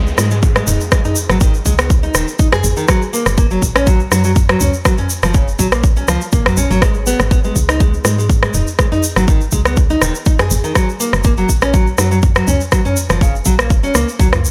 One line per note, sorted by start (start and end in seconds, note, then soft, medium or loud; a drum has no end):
0.00 0.13 C#2 loud
0.00 downlifter medium
0.07 shaker soft
0.18 0.62 G#2 loud
0.18 0.30 G#3 medium
0.18 cross-stick medium
0.18 shaker medium
0.31 0.37 G#3 medium
0.31 shaker soft
0.43 kick loud
0.43 shaker medium
0.56 0.66 G#3 medium
0.56 cross-stick medium
0.56 shaker soft
0.67 0.77 D#1 loud
0.67 0.80 D#4 medium
0.67 mid tom medium
0.67 shaker loud
0.81 shaker soft
0.92 0.99 G#3 medium
0.92 kick loud
0.92 cross-stick loud
0.92 shaker medium
1.05 1.15 D#4 loud
1.05 mid tom medium
1.05 shaker soft
1.15 shaker loud
1.29 1.61 G#1 loud
1.29 1.40 F#3 medium
1.29 cross-stick medium
1.29 shaker soft
1.40 1.53 D#3 medium
1.40 kick loud
1.40 shaker medium
1.54 shaker soft
1.66 2.10 C#2 loud
1.66 1.73 G#3 loud
1.66 kick medium
1.66 shaker medium
1.78 1.89 B3 medium
1.78 cross-stick loud
1.78 shaker soft
1.90 kick loud
1.90 shaker medium
2.03 2.14 D#4 loud
2.03 shaker soft
2.14 2.24 D#1 medium
2.14 2.26 D#3 medium
2.14 cross-stick medium
2.14 shaker loud
2.28 shaker soft
2.39 2.46 D#4 medium
2.39 kick loud
2.39 shaker medium
2.52 2.63 G#4 loud
2.52 cross-stick loud
2.52 mid tom loud
2.52 shaker soft
2.64 2.73 G#1 loud
2.64 shaker medium
2.77 2.87 D#3 medium
2.77 shaker soft
2.88 3.00 F#3 medium
2.88 kick loud
2.88 cross-stick loud
2.88 shaker medium
3.02 shaker soft
3.13 3.25 A#3 loud
3.13 shaker loud
3.26 3.57 F#1 loud
3.26 cross-stick medium
3.26 shaker soft
3.38 3.45 A#3 loud
3.38 kick loud
3.38 shaker medium
3.51 3.61 F#3 medium
3.51 shaker soft
3.62 4.07 A#1 loud
3.62 kick medium
3.62 shaker medium
3.76 3.86 C#4 loud
3.76 cross-stick loud
3.76 shaker soft
3.87 3.99 F#3 medium
3.87 kick loud
3.87 shaker medium
4.00 shaker soft
4.11 4.56 F#2 loud
4.11 4.23 F#3 medium
4.11 cross-stick medium
4.11 shaker loud
4.24 4.31 F#3 medium
4.24 shaker soft
4.36 kick loud
4.36 shaker medium
4.49 4.59 F#3 medium
4.49 cross-stick loud
4.49 shaker soft
4.60 4.70 C#2 loud
4.60 4.73 C#4 medium
4.60 mid tom medium
4.60 shaker medium
4.74 shaker soft
4.85 4.92 F#3 medium
4.85 kick loud
4.85 cross-stick loud
4.85 shaker medium
4.98 5.09 C#4 loud
4.98 mid tom medium
4.98 shaker soft
5.09 shaker medium
5.23 5.54 F#1 loud
5.23 5.33 F3 medium
5.23 cross-stick medium
5.23 shaker soft
5.34 5.46 C#3 medium
5.34 kick loud
5.34 shaker medium
5.48 shaker soft
5.59 6.03 A#1 loud
5.59 5.66 F#3 loud
5.59 kick medium
5.59 shaker medium
5.72 5.82 A#3 medium
5.72 cross-stick medium
5.72 shaker soft
5.84 kick loud
5.84 shaker medium
5.97 6.07 C#4 loud
5.97 shaker soft
6.08 6.18 C#2 medium
6.08 6.20 F3 loud
6.08 cross-stick medium
6.08 shaker medium
6.21 shaker soft
6.32 6.51 A#1 medium
6.32 6.45 A#3 medium
6.32 kick loud
6.32 shaker medium
6.46 6.56 F#3 medium
6.46 cross-stick loud
6.46 mid tom medium
6.46 shaker soft
6.57 6.67 A#1 medium
6.57 6.69 C#4 loud
6.57 shaker medium
6.70 7.14 G#1 loud
6.70 6.81 F#3 loud
6.70 shaker soft
6.82 6.94 G#3 medium
6.82 kick loud
6.82 cross-stick loud
6.82 shaker medium
6.94 shaker soft
7.07 7.18 B3 loud
7.07 shaker medium
7.20 7.51 G#1 loud
7.20 cross-stick medium
7.20 shaker soft
7.31 7.38 B3 loud
7.31 kick loud
7.31 shaker soft
7.44 7.55 G#3 medium
7.44 shaker soft
7.56 8.00 C#2 loud
7.56 kick medium
7.56 shaker medium
7.69 7.80 D#4 loud
7.69 cross-stick medium
7.69 shaker soft
7.80 7.92 G#3 medium
7.80 kick loud
7.80 shaker medium
7.94 shaker soft
8.05 8.49 G#2 loud
8.05 8.17 G#3 medium
8.05 cross-stick medium
8.05 shaker loud
8.18 8.24 G#3 medium
8.18 shaker soft
8.30 kick loud
8.30 shaker soft
8.43 8.53 G#3 medium
8.43 cross-stick medium
8.43 shaker soft
8.54 8.64 D#1 loud
8.54 8.67 D#4 medium
8.54 mid tom medium
8.54 shaker medium
8.67 shaker soft
8.79 8.86 G#3 medium
8.79 kick loud
8.79 cross-stick medium
8.79 shaker medium
8.92 9.02 D#4 loud
8.92 mid tom medium
8.92 shaker soft
9.03 shaker loud
9.16 9.48 G#1 loud
9.16 9.27 F#3 medium
9.16 cross-stick medium
9.16 shaker soft
9.28 9.40 D#3 medium
9.28 kick loud
9.28 shaker medium
9.41 shaker soft
9.52 9.97 C#2 loud
9.52 9.60 G#3 loud
9.52 kick medium
9.52 shaker medium
9.65 9.76 B3 medium
9.65 cross-stick medium
9.65 shaker soft
9.77 kick loud
9.77 shaker medium
9.90 10.00 D#4 loud
9.90 shaker soft
10.02 10.11 D#1 medium
10.02 10.13 D#3 medium
10.02 cross-stick medium
10.02 shaker medium
10.15 shaker soft
10.26 10.33 D#4 medium
10.26 kick loud
10.26 shaker soft
10.39 10.50 G#4 loud
10.39 cross-stick medium
10.39 mid tom medium
10.39 shaker soft
10.50 10.61 G#1 loud
10.50 shaker medium
10.64 10.74 D#3 medium
10.64 shaker soft
10.75 10.87 F#3 medium
10.75 kick loud
10.75 cross-stick medium
10.75 shaker medium
10.89 shaker soft
11.00 11.12 A#3 loud
11.00 shaker medium
11.13 11.44 F#1 loud
11.13 cross-stick medium
11.13 shaker soft
11.24 11.32 A#3 loud
11.24 kick loud
11.24 shaker medium
11.37 11.48 F#3 medium
11.37 shaker soft
11.49 11.94 A#1 loud
11.49 kick medium
11.49 shaker medium
11.62 11.73 C#4 loud
11.62 cross-stick medium
11.62 shaker soft
11.73 11.85 F#3 medium
11.73 kick loud
11.73 shaker medium
11.87 shaker soft
11.98 12.43 F#2 loud
11.98 12.10 F#3 medium
11.98 cross-stick medium
11.98 shaker medium
12.11 12.18 F#3 medium
12.11 shaker soft
12.22 kick loud
12.22 shaker medium
12.36 12.46 F#3 medium
12.36 cross-stick medium
12.36 shaker soft
12.47 12.57 C#2 loud
12.47 12.60 C#4 medium
12.47 mid tom medium
12.47 shaker medium
12.61 shaker soft
12.72 12.79 F#3 medium
12.72 kick loud
12.72 cross-stick medium
12.72 shaker medium
12.85 12.96 C#4 loud
12.85 mid tom medium
12.85 shaker soft
12.97 shaker medium
13.09 13.41 F#1 loud
13.09 13.20 F3 medium
13.09 cross-stick medium
13.09 shaker soft
13.21 13.33 C#3 medium
13.21 kick loud
13.21 shaker soft
13.35 shaker soft
13.45 13.72 A#1 loud
13.45 13.53 F#3 loud
13.45 kick medium
13.45 shaker medium
13.59 13.69 A#3 medium
13.59 cross-stick medium
13.59 shaker soft
13.70 13.89 F#1 loud
13.70 kick loud
13.70 shaker medium
13.83 13.94 C#4 loud
13.83 shaker soft
13.95 14.05 C#2 medium
13.95 14.07 A#3 loud
13.95 cross-stick medium
13.95 shaker medium
14.08 shaker soft
14.19 14.51 C#2 loud
14.19 14.27 F#3 loud
14.19 kick loud
14.19 shaker medium
14.33 14.39 F4 medium
14.33 cross-stick medium
14.33 mid tom loud
14.33 shaker soft
14.45 shaker medium